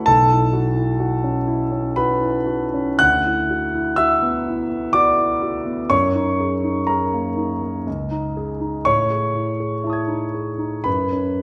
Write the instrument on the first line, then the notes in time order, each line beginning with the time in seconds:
grand piano
0.06 B1 A4 A5
0.31 E4
0.53 F#4
0.76 E4
1.00 F#4
1.24 C#4
1.47 E4
1.72 C#4
1.96 F#4 B4 B5
2.22 E4
2.47 F#4
2.74 C#4
2.99 D2 F#5 F#6
3.26 E4
3.50 F#4
3.74 E4
3.96 F#4 E5 E6
4.22 B3
4.47 E4
4.70 B3
4.93 F#4 D5 D6
5.17 E4
5.43 F#4
5.66 B3
5.90 F#2 C#5 C#6
6.15 D#4
6.40 G#4
6.64 D#4
6.87 G#4 A#4 A#5
7.13 A#3
7.37 D#4
7.62 A#3
7.87 C#2
8.11 D#4
8.37 G#4
8.60 D#4
8.85 A2 C#5 C#6
9.10 G#4
9.35 E4
9.60 G#4
9.84 E4 E5 A5
9.90 D#6 G#6
10.08 D#4
10.34 G#4
10.59 D#4
10.84 F#2 B4 B5
11.12 C#4